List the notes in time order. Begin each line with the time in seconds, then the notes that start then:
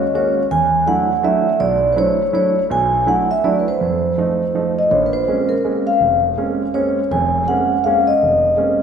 Already playing: C#5
0.14 G#3 A#3 C#4 F#4 C#5
0.51 E2 G#5
0.86 F#3 A3 D4 E4 F#5
1.23 F#3 A3 D4 E4 E5
1.60 B1 D5
1.92 F#3 A3 C5
1.96 D4 E4 C#5
2.33 F#3 A3 D4 E4 C#5
2.70 B1 B2 G#5
3.06 F#3 A3 D4 E4 F#5
3.31 E5
3.44 F#3 A3 D4 E4 D5
3.59 B4
3.68 C5
3.81 F2
4.18 F3 A3 D#4
4.55 F3 A3 D#4
4.79 D#5
4.91 A#1 A#2 C#5
5.06 B4
5.13 C5
5.28 G#3 A#3 C4 C#4
5.49 A#4
5.64 G#3 A#3 C4 C#4
5.87 F5
6.01 F1
6.38 G#3 A#3 C4 C#4
6.74 G#3 A#3 C4 C#4 C#5
7.11 F1 F2 G#5
7.48 G#3 A#3 C4 C#4 F#5
7.84 G#3 A#3 C4 C#4 F5
8.07 D#5
8.23 F1
8.57 G#3 A#3 C4 C#4